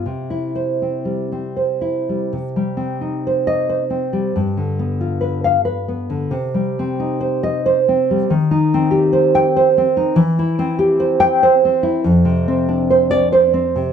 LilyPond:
\new Staff \with { instrumentName = "Nylon-string guitar" } { \time 3/4 \key c \major \tempo 4 = 93 << { \tuplet 3/2 { r4 c''8 } r2 | \key c \minor r4 \tuplet 3/2 { r4 ees''8 } r4 | r4 \tuplet 3/2 { r4 f''8 } r4 | r4 \tuplet 3/2 { r4 ees''8 } r4 |
r4 \tuplet 3/2 { r4 g''8 } r4 | \key c \major r4 \tuplet 3/2 { r4 g''8 } r4 | r4 \tuplet 3/2 { r4 d''8 } r4 | } \\ { \tuplet 3/2 { c8 e'4 c'8 g8 c'8 c''8 e'8 g8 } | \tuplet 3/2 { c8 g8 c'8 ees'8 c''4 c''8 c'8 g8 } | \tuplet 3/2 { g,8 d8 b8 f'8 b'4 b'8 b8 d8 } | \tuplet 3/2 { c8 g8 c'8 ees'8 c''4 c''8 c'8 g8 } |
\tuplet 3/2 { ees8 ees'8 c'8 g'8 c''4 c''8 c'8 ees'8 } | \tuplet 3/2 { e8 e'8 c'8 g'8 c''4 c''8 c'8 e'8 } | \tuplet 3/2 { f,8 c8 c'8 d'8 c''4 c''8 c'8 c8 } | } >> }